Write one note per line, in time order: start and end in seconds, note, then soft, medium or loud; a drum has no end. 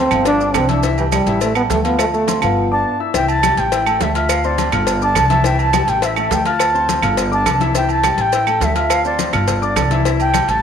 0.00 0.24 C4 loud
0.11 0.51 G1 loud
0.11 0.35 F3 medium
0.11 0.35 F4 medium
0.11 0.35 F5 medium
0.11 cowbell medium
0.11 high conga soft
0.11 low conga medium
0.11 low agogo loud
0.11 claves medium
0.11 maracas soft
0.25 0.57 D4 loud
0.25 cowbell loud
0.25 high conga soft
0.25 low agogo medium
0.25 maracas medium
0.40 0.64 D4 medium
0.40 0.64 D5 medium
0.40 0.64 D6 medium
0.40 high conga soft
0.40 maracas soft
0.54 1.21 C2 loud
0.54 0.72 C4 loud
0.54 cowbell medium
0.54 high conga medium
0.54 low timbale medium
0.54 low agogo loud
0.54 claves medium
0.54 maracas medium
0.69 0.84 D4 medium
0.69 0.81 E4 medium
0.69 0.81 E5 medium
0.69 0.81 E6 medium
0.69 cowbell medium
0.69 high conga medium
0.69 maracas soft
0.83 0.95 E3 medium
0.83 0.95 E4 medium
0.83 0.95 E5 medium
0.83 cowbell loud
0.83 high conga soft
0.83 maracas medium
0.98 1.05 E3 medium
0.98 1.21 G3 medium
0.98 1.22 G4 medium
0.98 1.22 G5 medium
0.98 high conga soft
0.98 low agogo medium
0.98 maracas soft
1.12 1.40 G3 loud
1.12 cowbell medium
1.12 high conga loud
1.12 low timbale medium
1.12 low agogo loud
1.12 claves medium
1.12 maracas medium
1.26 1.67 A1 loud
1.26 1.51 E3 medium
1.26 1.51 E4 medium
1.26 1.51 E5 medium
1.26 cowbell medium
1.26 high conga soft
1.26 maracas soft
1.41 1.55 A3 medium
1.41 cowbell loud
1.41 high conga soft
1.41 low agogo medium
1.41 maracas medium
1.55 1.80 G3 medium
1.55 1.63 B3 loud
1.55 1.80 G4 medium
1.55 1.80 G5 medium
1.55 high conga soft
1.55 low agogo loud
1.55 claves medium
1.55 maracas soft
1.70 2.36 D2 medium
1.70 1.87 A3 loud
1.70 cowbell medium
1.70 high conga medium
1.70 low timbale medium
1.70 maracas medium
1.85 2.08 F3 medium
1.85 1.99 B3 medium
1.85 2.08 F4 medium
1.85 2.09 F5 medium
1.85 cowbell medium
1.85 high conga soft
1.85 low agogo medium
1.85 maracas soft
1.99 2.06 A3 loud
1.99 cowbell loud
1.99 high conga soft
1.99 low agogo loud
1.99 claves medium
1.99 maracas medium
2.14 2.25 A3 medium
2.14 2.40 A3 medium
2.14 2.26 A4 medium
2.14 2.26 A5 medium
2.14 high conga soft
2.14 maracas soft
2.28 2.40 C4 medium
2.28 2.40 C5 medium
2.28 2.40 C6 medium
2.28 cowbell medium
2.28 high conga medium
2.28 low timbale medium
2.28 low agogo medium
2.28 maracas medium
2.42 2.82 G1 medium
2.42 2.66 F3 medium
2.42 2.96 B3 medium
2.42 2.66 F4 medium
2.42 2.66 F5 medium
2.42 cowbell medium
2.42 high conga soft
2.42 low conga medium
2.42 low agogo loud
2.42 claves medium
2.42 maracas soft
2.71 2.95 D4 medium
2.71 2.95 D5 medium
2.71 2.98 A5 loud
2.71 2.95 D6 medium
3.00 3.12 E4 medium
3.00 3.12 E5 medium
3.00 3.12 E6 medium
3.14 3.54 C2 loud
3.14 3.38 E3 medium
3.14 3.38 E4 medium
3.14 3.38 E5 loud
3.14 3.29 G5 loud
3.14 cowbell loud
3.14 high conga soft
3.14 maracas medium
3.29 3.60 A5 loud
3.29 high conga soft
3.29 low agogo medium
3.29 maracas soft
3.43 3.67 G3 medium
3.43 3.67 G4 medium
3.43 3.67 G5 medium
3.43 cowbell medium
3.43 high conga loud
3.43 low timbale medium
3.43 low agogo loud
3.43 claves medium
3.43 maracas medium
3.57 3.97 A1 loud
3.57 4.04 G5 loud
3.57 cowbell medium
3.57 high conga soft
3.57 maracas soft
3.72 3.83 E4 medium
3.72 3.84 E5 medium
3.72 3.84 E6 medium
3.72 cowbell loud
3.72 high conga soft
3.72 low agogo medium
3.72 maracas medium
3.86 4.10 A3 medium
3.86 4.10 A4 medium
3.86 4.10 A5 medium
3.86 high conga soft
3.86 low agogo loud
3.86 claves medium
3.86 maracas soft
4.01 4.67 D2 loud
4.01 4.16 E5 medium
4.01 cowbell medium
4.01 high conga medium
4.01 low timbale loud
4.01 maracas medium
4.15 4.39 F4 medium
4.15 4.32 E5 medium
4.15 4.39 F5 medium
4.15 4.39 F6 medium
4.15 cowbell medium
4.15 high conga soft
4.15 low agogo medium
4.15 maracas soft
4.29 4.47 F5 medium
4.29 cowbell loud
4.29 high conga soft
4.29 low agogo loud
4.29 claves medium
4.29 maracas medium
4.44 4.68 C4 medium
4.44 4.68 C5 medium
4.44 4.73 D5 medium
4.44 4.68 C6 medium
4.44 maracas soft
4.58 cowbell medium
4.58 high conga loud
4.58 low timbale medium
4.58 low agogo loud
4.58 maracas medium
4.72 5.13 G1 loud
4.72 4.96 F4 medium
4.72 4.96 F5 medium
4.72 4.97 F6 medium
4.72 cowbell medium
4.72 high conga soft
4.72 low conga medium
4.72 low agogo loud
4.72 claves medium
4.72 maracas soft
4.87 cowbell loud
4.87 high conga soft
4.87 low agogo medium
4.87 maracas medium
5.02 5.25 D4 medium
5.02 5.25 D5 medium
5.02 5.47 A5 loud
5.02 5.25 D6 medium
5.02 high conga soft
5.02 maracas soft
5.15 5.82 C2 loud
5.15 cowbell medium
5.15 high conga medium
5.15 low timbale medium
5.15 low agogo loud
5.15 claves medium
5.15 maracas medium
5.30 5.42 E3 loud
5.30 5.42 E4 loud
5.30 5.42 E5 loud
5.30 cowbell medium
5.30 high conga medium
5.30 maracas soft
5.44 5.68 E3 loud
5.44 5.68 E4 loud
5.44 5.69 E5 loud
5.44 5.60 G5 loud
5.44 cowbell loud
5.44 high conga soft
5.44 maracas medium
5.59 5.91 A5 loud
5.59 high conga soft
5.59 low agogo loud
5.59 maracas soft
5.73 5.97 G3 medium
5.73 5.97 G4 medium
5.73 5.97 G5 medium
5.73 cowbell medium
5.73 high conga loud
5.73 low timbale medium
5.73 low agogo loud
5.73 claves medium
5.73 maracas medium
5.87 6.28 A1 loud
5.87 6.06 G5 loud
5.87 cowbell medium
5.87 high conga soft
5.87 maracas soft
6.02 6.14 E4 medium
6.02 6.14 E5 medium
6.02 6.18 E5 medium
6.02 6.14 E6 medium
6.02 cowbell loud
6.02 high conga soft
6.02 low agogo medium
6.02 maracas medium
6.16 6.40 A3 medium
6.16 6.40 A4 medium
6.16 6.34 E5 medium
6.16 6.41 A5 medium
6.16 high conga soft
6.16 low agogo loud
6.16 claves medium
6.16 maracas soft
6.30 6.97 D2 loud
6.30 6.46 G5 medium
6.30 cowbell medium
6.30 high conga medium
6.30 low timbale medium
6.30 maracas medium
6.45 6.69 F4 medium
6.45 6.69 F5 medium
6.45 7.00 A5 loud
6.45 6.70 F6 medium
6.45 cowbell medium
6.45 high conga soft
6.45 low agogo medium
6.45 maracas soft
6.59 cowbell loud
6.59 high conga soft
6.59 low agogo loud
6.59 claves medium
6.59 maracas medium
6.74 6.98 C4 medium
6.74 6.98 C5 medium
6.74 6.98 C6 medium
6.74 high conga soft
6.74 maracas soft
6.89 cowbell medium
6.89 high conga loud
6.89 low timbale medium
6.89 low agogo medium
6.89 maracas medium
7.02 7.43 G1 loud
7.02 7.26 F4 medium
7.02 7.26 F5 medium
7.02 7.27 F6 medium
7.02 cowbell medium
7.02 high conga soft
7.02 low conga medium
7.02 low agogo loud
7.02 claves medium
7.02 maracas soft
7.17 cowbell loud
7.17 high conga soft
7.17 low agogo medium
7.17 maracas medium
7.31 7.55 D4 medium
7.31 7.55 D5 medium
7.31 7.59 A5 loud
7.31 7.55 D6 medium
7.31 high conga soft
7.31 maracas soft
7.45 8.12 C2 medium
7.45 cowbell medium
7.45 high conga medium
7.45 low timbale medium
7.45 low agogo loud
7.45 claves medium
7.45 maracas medium
7.60 7.72 E3 medium
7.60 7.72 E4 loud
7.60 7.73 E5 medium
7.60 cowbell medium
7.60 high conga medium
7.60 maracas soft
7.74 7.98 E3 medium
7.74 7.98 E4 medium
7.74 7.99 E5 loud
7.74 7.89 G5 loud
7.74 cowbell loud
7.74 high conga soft
7.74 maracas medium
7.89 8.22 A5 loud
7.89 high conga soft
7.89 low agogo medium
7.89 maracas soft
8.03 8.27 G3 medium
8.03 8.27 G4 medium
8.03 8.28 G5 medium
8.03 cowbell medium
8.03 high conga medium
8.03 low timbale medium
8.03 low agogo loud
8.03 claves medium
8.03 maracas medium
8.18 8.58 A1 loud
8.18 8.65 G5 loud
8.18 cowbell medium
8.18 high conga soft
8.18 maracas soft
8.32 8.44 E4 medium
8.32 8.45 E5 medium
8.32 8.45 E6 medium
8.32 cowbell loud
8.32 high conga soft
8.32 low agogo medium
8.32 maracas medium
8.47 8.70 A3 medium
8.47 8.71 A4 medium
8.47 8.71 A5 medium
8.47 high conga soft
8.47 low agogo loud
8.47 claves medium
8.47 maracas soft
8.60 9.27 D2 loud
8.60 8.77 E5 loud
8.60 cowbell medium
8.60 high conga medium
8.60 low timbale medium
8.60 maracas medium
8.75 8.99 F4 medium
8.75 8.93 E5 medium
8.75 8.99 F5 medium
8.75 8.99 F6 medium
8.75 cowbell medium
8.75 high conga soft
8.75 low agogo medium
8.75 maracas soft
8.90 9.05 F5 loud
8.90 cowbell loud
8.90 high conga soft
8.90 low agogo loud
8.90 claves medium
8.90 maracas medium
9.05 9.28 C4 medium
9.05 9.28 C5 medium
9.05 9.32 D5 medium
9.05 9.28 C6 medium
9.05 high conga soft
9.05 maracas soft
9.19 cowbell medium
9.19 high conga loud
9.19 low timbale medium
9.19 low agogo medium
9.19 maracas medium
9.33 9.73 G1 loud
9.33 9.57 F4 medium
9.33 9.57 F5 medium
9.33 9.57 F6 medium
9.33 cowbell medium
9.33 high conga soft
9.33 low conga medium
9.33 low agogo loud
9.33 claves medium
9.33 maracas soft
9.48 cowbell loud
9.48 high conga soft
9.48 low conga medium
9.48 low agogo medium
9.48 maracas medium
9.61 9.85 D4 medium
9.61 9.86 D5 medium
9.61 10.02 D5 medium
9.61 9.86 D6 medium
9.61 high conga soft
9.61 maracas soft
9.76 10.43 C2 loud
9.76 cowbell medium
9.76 high conga medium
9.76 low timbale medium
9.76 low agogo loud
9.76 claves medium
9.76 maracas medium
9.91 10.03 E3 loud
9.91 10.03 E4 medium
9.91 10.03 E5 medium
9.91 cowbell medium
9.91 high conga medium
9.91 maracas soft
10.05 10.29 E3 medium
10.05 10.29 E4 medium
10.05 10.11 E5 loud
10.05 10.29 E5 medium
10.05 cowbell loud
10.05 high conga soft
10.05 maracas medium
10.20 10.51 G5 loud
10.20 high conga soft
10.20 low agogo medium
10.20 maracas soft
10.34 10.58 G3 medium
10.34 10.58 G4 medium
10.34 10.58 G5 medium
10.34 cowbell medium
10.34 high conga loud
10.34 low timbale medium
10.34 low agogo loud
10.34 claves medium
10.34 maracas medium
10.48 10.62 A1 loud
10.48 10.62 A5 loud
10.48 cowbell medium
10.48 high conga soft
10.48 maracas soft